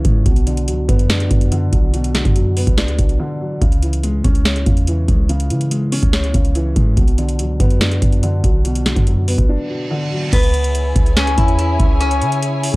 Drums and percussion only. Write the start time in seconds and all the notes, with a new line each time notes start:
0.05 kick, closed hi-hat
0.26 kick, closed hi-hat
0.36 closed hi-hat
0.47 closed hi-hat
0.57 closed hi-hat
0.68 closed hi-hat
0.89 kick, closed hi-hat
0.99 closed hi-hat
1.10 snare, closed hi-hat
1.20 closed hi-hat
1.31 kick, closed hi-hat
1.41 closed hi-hat
1.52 closed hi-hat
1.73 kick, closed hi-hat
1.94 closed hi-hat
2.04 closed hi-hat
2.15 snare, closed hi-hat
2.25 kick, closed hi-hat
2.36 closed hi-hat
2.57 open hi-hat
2.67 kick, closed hi-hat
2.78 snare, closed hi-hat
2.88 closed hi-hat
2.99 kick, closed hi-hat
3.09 closed hi-hat
3.62 kick, closed hi-hat
3.72 closed hi-hat
3.83 closed hi-hat
3.93 closed hi-hat
4.04 closed hi-hat
4.24 kick, closed hi-hat
4.35 closed hi-hat
4.45 snare, closed hi-hat
4.56 closed hi-hat
4.66 kick, closed hi-hat
4.77 closed hi-hat
4.87 closed hi-hat
5.08 kick, closed hi-hat
5.29 closed hi-hat
5.40 closed hi-hat
5.50 closed hi-hat
5.61 closed hi-hat
5.71 closed hi-hat
5.92 open hi-hat
6.03 kick, closed hi-hat
6.13 snare, closed hi-hat
6.24 closed hi-hat
6.34 kick, closed hi-hat
6.45 closed hi-hat
6.55 closed hi-hat
6.76 kick, closed hi-hat
6.97 kick, closed hi-hat
7.08 closed hi-hat
7.18 closed hi-hat
7.29 closed hi-hat
7.39 closed hi-hat
7.60 kick, closed hi-hat
7.71 closed hi-hat
7.81 snare, closed hi-hat
7.92 closed hi-hat
8.02 kick, closed hi-hat
8.13 closed hi-hat
8.23 closed hi-hat
8.44 kick, closed hi-hat
8.65 closed hi-hat
8.75 closed hi-hat
8.86 snare, closed hi-hat
8.96 kick, closed hi-hat
9.07 closed hi-hat
9.28 open hi-hat
9.38 kick, closed hi-hat
10.33 kick, closed hi-hat, crash
10.43 closed hi-hat
10.54 closed hi-hat
10.64 closed hi-hat
10.75 closed hi-hat
10.96 kick, closed hi-hat
11.06 closed hi-hat
11.17 snare, closed hi-hat
11.27 closed hi-hat
11.38 kick, closed hi-hat
11.48 closed hi-hat
11.59 closed hi-hat
11.80 kick, closed hi-hat
12.01 closed hi-hat
12.11 closed hi-hat
12.22 closed hi-hat
12.32 closed hi-hat
12.43 closed hi-hat
12.64 open hi-hat